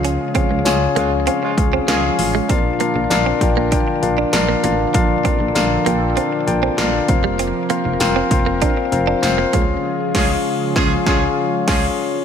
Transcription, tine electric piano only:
0.00 0.62 C#3 medium
0.00 0.23 C#4 medium
0.00 0.23 F4 medium
0.00 0.23 G#4 medium
0.00 0.23 C#5 medium
0.00 0.23 F5 medium
0.34 0.54 C#4 medium
0.34 0.54 F4 medium
0.34 0.54 G#4 medium
0.34 0.54 C#5 medium
0.34 0.55 F5 loud
0.65 0.85 C#4 loud
0.65 0.85 F4 loud
0.65 0.85 G#4 loud
0.65 0.85 C#5 loud
0.65 0.85 G#5 loud
0.95 1.15 C#4 medium
0.95 1.15 F4 medium
0.95 1.15 G#4 medium
0.95 1.16 C#5 medium
0.95 1.16 F5 medium
1.26 1.46 C#4 medium
1.26 1.46 F4 medium
1.26 1.46 G#4 medium
1.26 1.46 C#5 medium
1.26 1.46 F5 loud
1.57 1.77 C#4 medium
1.57 1.77 F4 medium
1.57 1.77 G#4 medium
1.57 1.77 C#5 medium
1.57 1.77 F5 medium
1.87 2.07 C#4 loud
1.87 2.07 F4 loud
1.87 2.07 G#4 loud
1.87 2.07 C#5 loud
1.87 2.08 F5 loud
2.18 2.38 C#4 medium
2.18 2.38 F4 medium
2.18 2.38 G#4 medium
2.18 2.38 C#5 medium
2.18 2.38 F5 medium
2.49 3.37 A#2 medium
2.49 2.68 D4 loud
2.49 2.68 F4 loud
2.49 2.69 A#4 loud
2.49 2.69 D5 loud
2.49 2.69 F5 loud
2.79 2.99 D4 medium
2.79 2.99 F4 medium
2.79 2.99 A#4 medium
2.79 2.99 D5 medium
2.79 3.00 F5 loud
3.10 3.30 D4 loud
3.10 3.30 F4 loud
3.10 3.30 A#4 loud
3.10 3.30 D5 loud
3.10 3.30 F5 loud
3.41 3.60 D4 medium
3.41 3.60 F4 medium
3.41 3.60 A#4 medium
3.41 3.61 D5 medium
3.41 3.61 G5 medium
3.71 3.91 D4 medium
3.71 3.91 F4 medium
3.71 3.91 A#4 medium
3.71 3.91 D5 medium
3.71 3.91 G5 loud
4.02 4.21 D4 medium
4.02 4.22 F4 medium
4.02 4.22 A#4 medium
4.02 4.22 D5 medium
4.02 4.22 F5 medium
4.33 4.52 D4 loud
4.33 4.52 F4 loud
4.33 4.52 A#4 loud
4.33 4.52 D5 loud
4.33 4.53 F5 loud
4.63 4.83 D4 medium
4.63 4.83 F4 medium
4.63 4.83 A#4 medium
4.63 4.83 D5 medium
4.63 4.83 F5 medium
4.94 5.82 A#2 medium
4.94 5.13 D4 loud
4.94 5.13 F4 loud
4.94 5.13 A#4 loud
4.94 5.14 D5 loud
4.94 5.14 F5 loud
5.24 5.44 D4 medium
5.24 5.44 F4 medium
5.24 5.44 A#4 medium
5.24 5.44 D5 medium
5.24 5.44 F5 loud
5.55 5.74 D4 loud
5.55 5.74 F4 loud
5.55 5.74 A#4 loud
5.55 5.75 D5 loud
5.55 5.75 F5 loud
5.85 6.05 D4 medium
5.85 6.05 F4 medium
5.85 6.05 A#4 medium
5.85 6.05 D5 medium
5.85 6.06 G5 medium
6.16 6.35 D4 medium
6.16 6.36 F4 medium
6.16 6.36 A#4 medium
6.16 6.36 D5 medium
6.16 6.36 F5 loud
6.46 6.66 D4 medium
6.46 6.66 F4 medium
6.46 6.66 A#4 medium
6.46 6.66 D5 medium
6.46 6.67 G5 loud
6.77 6.97 D4 loud
6.77 6.97 F4 loud
6.77 6.97 A#4 loud
6.77 6.97 D5 loud
6.77 6.97 F5 loud
7.08 7.57 C4 medium
7.08 7.57 F4 medium
7.08 7.58 A#4 medium
7.08 7.58 C5 medium
7.08 7.58 F5 loud
7.69 7.89 C4 medium
7.69 7.89 F4 medium
7.69 7.89 A#4 medium
7.69 7.89 C5 medium
7.69 7.89 F5 loud
8.00 8.19 C4 loud
8.00 8.20 F4 loud
8.00 8.20 A#4 loud
8.00 8.20 C5 loud
8.00 8.20 F5 loud
8.30 8.50 C4 medium
8.30 8.50 F4 medium
8.30 8.50 A#4 medium
8.30 8.50 C5 medium
8.30 8.51 F5 medium
8.61 8.80 C4 medium
8.61 8.81 F4 medium
8.61 8.81 A#4 medium
8.61 8.81 C5 medium
8.61 8.81 F5 loud
8.92 9.11 C4 medium
8.92 9.11 F4 medium
8.92 9.12 A#4 medium
8.92 9.12 C5 medium
8.92 9.12 F5 loud
9.22 9.42 C4 loud
9.22 9.42 F4 loud
9.22 9.42 A#4 loud
9.22 9.42 C5 loud
9.22 9.42 F5 loud
9.53 9.82 C#3 medium
9.53 9.84 C#4 medium
9.53 9.84 F4 medium
9.53 9.84 G#4 medium
9.53 9.85 C#5 medium
9.53 9.85 F5 loud
10.14 10.35 C#4 loud
10.14 10.36 F4 loud
10.14 10.36 G#4 loud
10.14 10.36 C#5 loud
10.14 10.36 F5 loud
10.76 10.97 C#4 loud
10.76 10.97 F4 loud
10.76 10.97 G#4 loud
10.76 10.97 C#5 loud
10.76 10.97 F5 loud
11.06 11.27 C#4 loud
11.06 11.27 F4 loud
11.06 11.27 G#4 loud
11.06 11.28 C#5 loud
11.06 11.28 F5 loud
11.67 11.88 C#4 loud
11.67 11.88 F4 loud
11.67 11.89 G#4 loud
11.67 11.89 C#5 loud
11.67 11.89 F5 loud

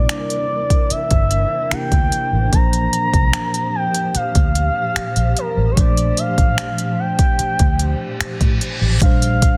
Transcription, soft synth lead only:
0.10 0.92 D5 loud
0.91 1.74 E5 loud
1.73 2.53 G5 loud
2.54 3.76 A#5 loud
3.75 4.15 G5 loud
4.16 5.40 F5 loud
5.38 5.73 A#4 medium
5.71 5.79 C#5 medium
5.78 6.20 D5 loud
6.18 7.01 F5 loud
6.99 8.21 G5 loud
9.03 9.57 F5 loud

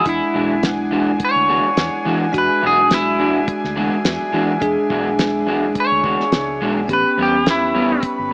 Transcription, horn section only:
0.00 6.86 D4 medium
0.00 6.85 G#4 medium
0.00 2.30 F#5 medium
0.00 6.85 G#5 medium
2.34 6.85 E4 medium
2.34 6.85 E5 medium
6.89 8.33 B4 medium
6.89 8.33 C#5 medium
6.89 8.33 G5 medium
6.89 8.33 B5 medium

